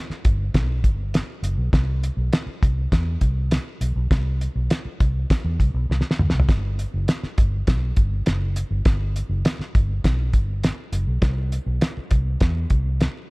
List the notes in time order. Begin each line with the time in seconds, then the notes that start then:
0.10 muted fingered electric bass stroke, snare
0.25 G1, kick, closed hi-hat
0.54 B1, kick, snare, closed hi-hat
0.84 G1, kick, closed hi-hat
1.14 snare, closed hi-hat
1.42 F#1, closed hi-hat
1.58 B1
1.73 C2, kick, snare, closed hi-hat
2.03 closed hi-hat
2.17 B1
2.33 snare, closed hi-hat
2.46 muted fingered electric bass stroke
2.62 C2, kick, closed hi-hat
2.92 E2, kick, snare, closed hi-hat
3.21 C2, kick, closed hi-hat
3.51 snare, closed hi-hat
3.81 B1, closed hi-hat
3.96 B1
4.11 C2, kick, snare, closed hi-hat
4.41 closed hi-hat
4.55 B1
4.70 snare, closed hi-hat
4.85 muted fingered electric bass stroke
5.00 C2, kick, closed hi-hat
5.30 kick, snare, closed hi-hat
5.45 E2
5.60 C2, kick, closed hi-hat
5.74 B1
5.89 C2, snare
6.01 snare
6.11 snare
6.19 D2, mid tom
6.30 C2, snare
6.40 floor tom
6.49 G1, kick, snare, closed hi-hat
6.79 closed hi-hat
6.94 F#1
7.08 snare, closed hi-hat
7.23 muted fingered electric bass stroke, snare
7.38 G1, kick, closed hi-hat
7.67 B1, kick, snare, closed hi-hat
7.96 G1, kick, closed hi-hat
8.26 F#1, snare, closed hi-hat
8.56 closed hi-hat
8.71 G1
8.85 G1, kick, snare, closed hi-hat
9.16 closed hi-hat
9.29 F#1
9.45 snare, closed hi-hat
9.59 muted fingered electric bass stroke, snare
9.75 G1, kick, closed hi-hat
10.04 B1, kick, snare, closed hi-hat
10.33 G1, kick, closed hi-hat
10.63 snare, closed hi-hat
10.92 F#1, closed hi-hat
11.07 B1
11.22 C2, kick, snare, closed hi-hat
11.52 closed hi-hat
11.66 B1
11.81 snare, closed hi-hat
11.97 muted fingered electric bass stroke
12.11 C2, kick, closed hi-hat
12.40 E2, kick, snare, closed hi-hat
12.70 C2, kick, closed hi-hat
13.01 snare, closed hi-hat